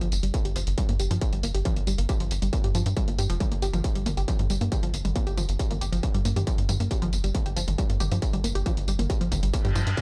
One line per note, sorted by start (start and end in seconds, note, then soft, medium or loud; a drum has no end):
0.01 0.10 G1 medium
0.01 0.06 F3 loud
0.01 closed hi-hat medium
0.01 tambourine soft
0.12 0.21 G1 loud
0.12 open hi-hat loud
0.12 tambourine medium
0.23 0.32 G1 medium
0.23 0.26 G3 medium
0.23 closed hi-hat medium
0.23 tambourine soft
0.34 0.37 A#3 medium
0.34 kick loud
0.34 closed hi-hat medium
0.34 tambourine soft
0.45 0.54 G1 medium
0.45 0.49 G4 medium
0.45 closed hi-hat medium
0.45 tambourine soft
0.56 0.65 G1 loud
0.56 0.60 F3 loud
0.56 open hi-hat loud
0.56 tambourine medium
0.67 0.76 G1 medium
0.67 closed hi-hat medium
0.67 tambourine soft
0.78 0.80 G3 medium
0.78 kick loud
0.78 closed hi-hat medium
0.78 tambourine soft
0.89 0.98 G2 medium
0.89 0.92 A#3 medium
0.89 closed hi-hat medium
0.89 tambourine soft
1.00 1.09 G1 loud
1.00 1.04 G4 medium
1.00 open hi-hat loud
1.00 tambourine medium
1.11 1.20 G2 medium
1.11 1.15 F3 medium
1.11 closed hi-hat medium
1.11 tambourine soft
1.21 kick loud
1.21 closed hi-hat medium
1.21 tambourine soft
1.33 1.42 G1 medium
1.33 1.35 G3 medium
1.33 closed hi-hat medium
1.33 tambourine soft
1.43 1.53 G1 loud
1.43 1.46 A#3 medium
1.43 open hi-hat loud
1.43 tambourine medium
1.54 1.63 G1 loud
1.54 1.59 G4 medium
1.54 closed hi-hat medium
1.54 tambourine soft
1.65 1.70 F3 loud
1.65 kick loud
1.65 closed hi-hat medium
1.65 tambourine soft
1.76 1.85 G1 medium
1.76 closed hi-hat soft
1.76 tambourine soft
1.87 1.96 G1 loud
1.87 1.90 G3 medium
1.87 open hi-hat loud
1.87 tambourine medium
1.98 2.07 G1 medium
1.98 2.01 A#3 medium
1.98 closed hi-hat medium
1.98 tambourine soft
2.09 2.14 G4 medium
2.09 kick loud
2.09 closed hi-hat medium
2.09 tambourine soft
2.20 2.29 G1 medium
2.20 2.25 F3 loud
2.20 closed hi-hat medium
2.20 tambourine soft
2.31 2.40 G1 loud
2.31 open hi-hat loud
2.31 tambourine medium
2.42 2.51 G1 medium
2.42 2.45 G3 medium
2.42 closed hi-hat medium
2.42 tambourine soft
2.53 2.56 A#3 medium
2.53 kick loud
2.53 closed hi-hat medium
2.53 tambourine soft
2.64 2.73 G2 medium
2.64 2.68 G4 medium
2.64 closed hi-hat medium
2.64 tambourine soft
2.75 2.84 G2 loud
2.75 2.79 F3 loud
2.75 open hi-hat loud
2.75 tambourine medium
2.86 2.95 G2 medium
2.86 closed hi-hat medium
2.86 tambourine soft
2.97 2.99 G3 medium
2.97 kick loud
2.97 closed hi-hat medium
2.97 tambourine soft
3.08 3.17 G1 medium
3.08 3.10 A#3 medium
3.08 closed hi-hat medium
3.08 tambourine soft
3.19 3.28 G2 loud
3.19 3.23 G4 medium
3.19 open hi-hat loud
3.19 tambourine medium
3.30 3.39 F1 medium
3.30 3.34 F3 loud
3.30 closed hi-hat medium
3.30 tambourine soft
3.40 3.43 G3 medium
3.40 kick loud
3.40 closed hi-hat medium
3.40 mid tom medium
3.40 tambourine soft
3.52 3.61 G1 medium
3.52 3.54 A#3 medium
3.52 closed hi-hat soft
3.52 tambourine soft
3.62 3.72 G1 loud
3.62 3.67 G4 medium
3.62 open hi-hat loud
3.62 tambourine medium
3.73 3.82 G1 medium
3.73 3.78 F3 loud
3.73 closed hi-hat medium
3.73 mid tom medium
3.73 tambourine soft
3.84 kick loud
3.84 closed hi-hat medium
3.84 tambourine soft
3.95 4.04 G1 medium
3.95 3.98 G3 medium
3.95 closed hi-hat soft
3.95 tambourine soft
4.06 4.15 G1 loud
4.06 4.09 A#3 medium
4.06 open hi-hat loud
4.06 mid tom medium
4.06 tambourine medium
4.17 4.26 G1 medium
4.17 4.22 G4 medium
4.17 closed hi-hat soft
4.17 tambourine soft
4.28 4.33 F3 loud
4.28 kick loud
4.28 closed hi-hat medium
4.28 tambourine soft
4.39 4.48 G2 medium
4.39 closed hi-hat soft
4.39 mid tom medium
4.39 tambourine soft
4.50 4.59 G1 loud
4.50 4.53 G3 medium
4.50 open hi-hat loud
4.50 tambourine medium
4.61 4.70 G2 medium
4.61 4.64 A#3 medium
4.61 closed hi-hat soft
4.61 tambourine soft
4.72 4.76 G4 medium
4.72 kick loud
4.72 closed hi-hat medium
4.72 mid tom medium
4.72 tambourine soft
4.83 4.92 G1 medium
4.83 4.87 F3 loud
4.83 closed hi-hat medium
4.83 tambourine soft
4.94 5.03 G1 loud
4.94 open hi-hat loud
4.94 tambourine medium
5.05 5.14 G1 medium
5.05 5.08 G3 medium
5.05 closed hi-hat medium
5.05 mid tom medium
5.05 tambourine soft
5.16 5.18 A#3 medium
5.16 kick loud
5.16 closed hi-hat medium
5.16 tambourine soft
5.27 5.36 G1 medium
5.27 5.31 G4 medium
5.27 closed hi-hat soft
5.27 tambourine soft
5.37 5.47 G1 loud
5.37 5.42 F3 loud
5.37 open hi-hat loud
5.37 mid tom medium
5.37 tambourine medium
5.49 5.58 G1 medium
5.49 closed hi-hat medium
5.49 tambourine soft
5.59 5.62 G3 medium
5.59 kick loud
5.59 closed hi-hat medium
5.59 tambourine soft
5.71 5.79 G1 medium
5.71 5.73 A#3 medium
5.71 closed hi-hat medium
5.71 mid tom medium
5.71 tambourine soft
5.81 5.91 G1 loud
5.81 5.86 G4 medium
5.81 open hi-hat loud
5.81 tambourine medium
5.92 6.01 G1 medium
5.92 5.97 F3 loud
5.92 closed hi-hat medium
5.92 tambourine soft
6.03 kick loud
6.03 closed hi-hat medium
6.03 mid tom medium
6.03 tambourine soft
6.14 6.23 G2 medium
6.14 6.17 G3 medium
6.14 closed hi-hat soft
6.14 tambourine soft
6.25 6.34 G2 loud
6.25 6.28 A#3 medium
6.25 open hi-hat loud
6.25 tambourine medium
6.36 6.45 G2 medium
6.36 6.41 G4 medium
6.36 closed hi-hat medium
6.36 mid tom medium
6.36 tambourine soft
6.47 6.52 F3 loud
6.47 kick loud
6.47 closed hi-hat medium
6.47 tambourine soft
6.58 6.67 G2 medium
6.58 closed hi-hat soft
6.58 tambourine soft
6.69 6.78 G2 loud
6.69 6.72 G3 medium
6.69 open hi-hat loud
6.69 mid tom medium
6.69 tambourine medium
6.80 6.89 G2 medium
6.80 6.83 A#3 medium
6.80 closed hi-hat medium
6.80 tambourine soft
6.91 6.95 G4 medium
6.91 kick loud
6.91 closed hi-hat medium
6.91 tambourine soft
7.02 7.11 G1 medium
7.02 7.06 F3 loud
7.02 closed hi-hat soft
7.02 mid tom medium
7.02 tambourine soft
7.13 7.22 G1 medium
7.13 open hi-hat loud
7.13 tambourine medium
7.24 7.33 G1 medium
7.24 7.27 G3 medium
7.24 closed hi-hat medium
7.24 tambourine soft
7.35 7.37 A#3 medium
7.35 kick loud
7.35 closed hi-hat medium
7.35 mid tom medium
7.35 tambourine soft
7.46 7.55 G1 medium
7.46 7.50 G4 medium
7.46 closed hi-hat medium
7.46 tambourine soft
7.56 7.66 G1 loud
7.56 7.61 F3 loud
7.56 open hi-hat loud
7.56 tambourine medium
7.68 7.77 G1 medium
7.68 closed hi-hat medium
7.68 mid tom medium
7.68 tambourine soft
7.78 7.81 G3 medium
7.78 kick loud
7.78 closed hi-hat medium
7.78 tambourine soft
7.90 7.98 G2 medium
7.90 7.92 A#3 medium
7.90 closed hi-hat soft
7.90 tambourine soft
8.00 8.10 G1 loud
8.00 8.05 G4 medium
8.00 open hi-hat loud
8.00 mid tom medium
8.00 tambourine medium
8.11 8.20 G2 medium
8.11 8.16 F3 loud
8.11 closed hi-hat soft
8.11 tambourine soft
8.22 kick loud
8.22 closed hi-hat medium
8.22 tambourine soft
8.33 8.42 G1 medium
8.33 8.36 G3 medium
8.33 closed hi-hat medium
8.33 mid tom medium
8.33 tambourine soft
8.44 8.53 G1 loud
8.44 8.47 A#3 medium
8.44 open hi-hat loud
8.44 tambourine medium
8.55 8.64 G1 medium
8.55 8.60 G4 medium
8.55 closed hi-hat medium
8.55 tambourine soft
8.66 8.71 F3 loud
8.66 kick loud
8.66 closed hi-hat medium
8.66 mid tom medium
8.66 tambourine soft
8.77 8.86 G1 medium
8.77 closed hi-hat medium
8.77 tambourine soft
8.88 8.97 G1 loud
8.88 8.91 G3 medium
8.88 open hi-hat loud
8.88 tambourine medium
8.99 9.08 G1 medium
8.99 9.02 A#3 medium
8.99 closed hi-hat medium
8.99 mid tom medium
8.99 tambourine soft
9.10 9.14 G4 medium
9.10 kick loud
9.10 closed hi-hat medium
9.10 tambourine soft
9.21 9.30 G1 medium
9.21 9.25 F3 loud
9.21 closed hi-hat medium
9.21 tambourine soft
9.32 9.41 G1 loud
9.32 kick medium
9.32 open hi-hat loud
9.32 mid tom medium
9.32 tambourine medium
9.43 9.52 G1 medium
9.43 9.45 G3 medium
9.43 closed hi-hat medium
9.43 tambourine soft
9.54 9.56 A#3 medium
9.54 kick loud
9.54 closed hi-hat medium
9.54 tambourine soft
9.54 reverse cymbal medium
9.65 9.74 G2 medium
9.65 9.69 G4 medium
9.65 open hi-hat medium
9.65 mid tom medium
9.65 tambourine soft
9.75 9.85 G2 loud
9.75 9.80 F3 loud
9.75 open hi-hat loud
9.75 tambourine medium
9.87 9.96 G2 medium
9.87 closed hi-hat medium
9.87 tambourine soft
9.97 10.00 G3 medium
9.97 kick loud
9.97 closed hi-hat medium
9.97 mid tom medium
9.97 tambourine soft